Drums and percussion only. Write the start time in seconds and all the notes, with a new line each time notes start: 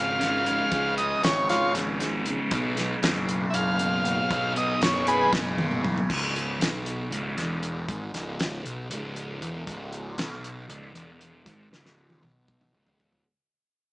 0.21 snare, closed hi-hat
0.46 closed hi-hat
0.72 kick, closed hi-hat
0.98 closed hi-hat
1.24 snare, closed hi-hat
1.49 snare, closed hi-hat
1.75 snare, closed hi-hat
2.00 snare, closed hi-hat
2.26 closed hi-hat
2.51 kick, closed hi-hat
2.77 snare, closed hi-hat
3.03 snare, closed hi-hat
3.29 closed hi-hat
3.54 closed hi-hat
3.79 closed hi-hat
4.05 closed hi-hat
4.31 kick, closed hi-hat
4.56 closed hi-hat
4.82 snare, closed hi-hat
5.07 closed hi-hat
5.33 kick, snare
5.58 high tom
5.71 mid tom
5.84 mid tom
5.98 floor tom
6.10 kick, crash
6.36 closed hi-hat
6.61 snare, closed hi-hat
6.86 closed hi-hat
7.12 closed hi-hat
7.38 snare, closed hi-hat
7.63 closed hi-hat
7.89 kick, closed hi-hat
8.14 snare, closed hi-hat
8.39 snare, closed hi-hat
8.66 closed hi-hat
8.91 closed hi-hat
9.16 closed hi-hat
9.42 closed hi-hat
9.67 kick, closed hi-hat
9.93 closed hi-hat
10.18 snare, closed hi-hat
10.44 closed hi-hat
10.70 closed hi-hat
10.95 closed hi-hat
11.21 closed hi-hat
11.46 kick, closed hi-hat
11.73 snare
11.86 snare
12.10 high tom
12.23 high tom
12.48 kick, mid tom
12.61 mid tom
12.87 floor tom
13.00 floor tom
13.12 floor tom